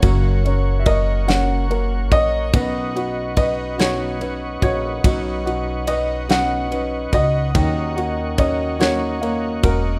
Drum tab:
RD |xxxxxx|xxxxxx|xxxxxx|xxxxxx|
SD |---o--|---o--|---o--|---o--|
BD |o-o--o|o-o--o|o----o|o-o--o|